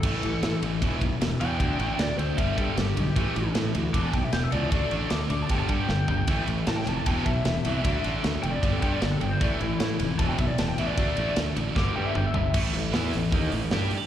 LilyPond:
<<
  \new Staff \with { instrumentName = "Lead electric guitar" } { \time 4/4 \key d \dorian \tempo 4 = 154 a'4. r2 g''8~ | g''4 d''8 c''8 e''8 a'8 g'4~ | g'4 r4 d'''16 a''16 g''16 e''16 g''16 e''16 d''8 | d''8 r8 d'''16 r16 d'''16 a''16 g''16 a''16 g''4.~ |
g''8 r8 a''16 g''16 a''16 a''16 g''16 a''16 e''4.~ | e''8 r4 g''16 d''16 d''16 a'16 g''16 d''16 d''16 a'16 g''16 c''16 | d''16 a'16 e'4 r8 a''16 g''16 e''16 d''16 a''16 g''16 e''16 d''16 | d''4 r4 d'''8 g''16 e''16 g''16 e''16 e''8 |
r1 | }
  \new Staff \with { instrumentName = "Tonewheel organ" } { \time 4/4 \key d \dorian << { b'2 e''2~ | e''2 r2 | b'2 e''2~ | e''2 r2 |
b'2 e''2~ | e''2 r2 | b'2 e''2~ | e''2 r2 |
b'1 | } \\ { e'1 | a'1 | e'2 r2 | a'1 |
e'2 b'2 | a'1 | e'1 | a'2 d'2 |
e'1 | } >> }
  \new Staff \with { instrumentName = "Tonewheel organ" } { \time 4/4 \key d \dorian a2 r2 | d'2 g2 | a2 e'2 | d'2 g2 |
a2 r2 | d'2 g2 | a2 r2 | d'2 g2 |
a1 | }
  \new Staff \with { instrumentName = "Distorted electric guitar" } { \clef bass \time 4/4 \key d \dorian <a, e a>8 <a, e>8 <a, e>8 <a, e>8 <e, b, e>8 <e, b,>8 <e, b,>8 <e, b, e>8 | <d a d'>8 <d a d'>8 <d a>8 <d a>8 <g, d g>8 <g, d g>8 <g, d>8 <g, d>8 | <a, e a>8 <a, e>8 <a, e>8 <a, e>8 <e, b, e>8 <e, b,>8 <e, b,>8 <e, b, e>8 | <d a d'>8 <d a d'>8 <d a>8 <d a>8 <g, d g>8 <g, d g>8 <g, d>8 <g, d>8 |
<a, e a>8 <a, e>8 <a, e>8 <a, e>8 <e, b, e>8 <e, b,>8 <e, b,>8 <e, b, e>8 | <d a d'>8 <d a d'>8 <d a>8 <d a>8 <g, d g>8 <g, d g>8 <g, d>8 <g, d>8 | <a, e a>8 <a, e>8 <a, e>8 <a, e>8 <e, b, e>8 <e, b,>8 <e, b,>8 <e, b, e>8 | <d a d'>8 <d a d'>8 <d a>8 <d a>8 <g, d g>8 <g, d g>8 <g, d>8 <g, d>8 |
<a, e a>8 <a, e>8 <e b e'>8 <a, e>8 <dis bes dis'>8 <a, e>8 <g d' g'>8 r8 | }
  \new Staff \with { instrumentName = "Distorted electric guitar" } { \clef bass \time 4/4 \key d \dorian <a, e a>8 <a, e>8 <a, e>8 <a, e>8 <e, b, e>8 <e, b,>8 <e, b,>8 <e, b, e>8 | <d a d'>8 <d a d'>8 <d a>8 <d a>8 <g, d g>8 <g, d g>8 <g, d>8 <g, d>8 | <a, e a>8 <a, e>8 <a, e>8 <a, e>8 <e, b, e>8 <e, b,>8 <e, b,>8 <e, b, e>8 | <d a d'>8 <d a d'>8 <d a>8 <d a>8 <g, d g>8 <g, d g>8 <g, d>8 <g, d>8 |
<a, e a>8 <a, e>8 <a, e>8 <a, e>8 <e, b, e>8 <e, b,>8 <e, b,>8 <e, b, e>8 | <d a d'>8 <d a d'>8 <d a>8 <d a>8 <g, d g>8 <g, d g>8 <g, d>8 <g, d>8 | <a, e a>8 <a, e>8 <a, e>8 <a, e>8 <e, b, e>8 <e, b,>8 <e, b,>8 <e, b, e>8 | <d a d'>8 <d a d'>8 <d a>8 <d a>8 <g, d g>8 <g, d g>8 <g, d>8 <g, d>8 |
<a, e a>8 <a, e>8 <e b e'>8 <a, e>8 <dis bes dis'>8 <a, e>8 <g d' g'>8 r8 | }
  \new Staff \with { instrumentName = "Fingered electric bass" } { \clef bass \time 4/4 \key d \dorian a,,8 a,,8 a,8 a,,8 e,,8 b,,8 e,,8 e,8 | d,8 a,,8 d,8 d,8 g,,8 g,8 g,,8 b,,8 | a,,8 a,,8 a,8 d,8 e,,8 b,,8 e,,8 cis,8 | d,8 a,,8 d,8 d,8 g,,8 g,8 g,,8 g,,8 |
a,,8 a,,8 a,8 f,,8 e,,8 b,,8 e,,8 c,8 | d,8 a,,8 d,8 f,,8 g,,8 g,8 g,,8 g,,8 | a,,8 a,,8 a,8 f,,8 e,,8 b,,8 e,,8 a,,8 | d,8 a,,8 d,8 a,,8 g,,8 g,8 g,,8 g,,8 |
a,,8 a,,8 e,8 a,,8 dis,8 a,,8 g,8 r8 | }
  \new DrumStaff \with { instrumentName = "Drums" } \drummode { \time 4/4 <cymc bd cymr>8 cymr8 <cymr sn>8 cymr8 <bd cymr>8 <bd cymr>8 <cymr sn>8 cymr8 | <bd cymr>8 cymr8 <cymr sn>8 cymr8 <bd cymr>8 <bd cymr>8 <cymr sn>8 cymr8 | <bd cymr>8 cymr8 <cymr sn>8 cymr8 <bd cymr>8 <bd cymr>8 <cymr sn>8 cymr8 | <bd cymr>8 cymr8 <cymr sn>8 cymr8 <bd cymr>8 <bd cymr>8 sn8 tomfh8 |
<bd cymr>8 cymr8 <cymr sn>8 cymr8 <bd cymr>8 <bd cymr>8 <cymr sn>8 cymr8 | <bd cymr>8 cymr8 <cymr sn>8 cymr8 <bd cymr>8 <bd cymr>8 <cymr sn>8 cymr8 | <bd cymr>8 cymr8 <cymr sn>8 cymr8 <bd cymr>8 <bd cymr>8 <cymr sn>8 cymr8 | <bd cymr>8 cymr8 <cymr sn>8 cymr8 <bd sn>4 toml8 tomfh8 |
<cymc bd>8 hho8 <hho sn>8 hho8 <hho bd>8 hho8 <hho sn>8 hho8 | }
>>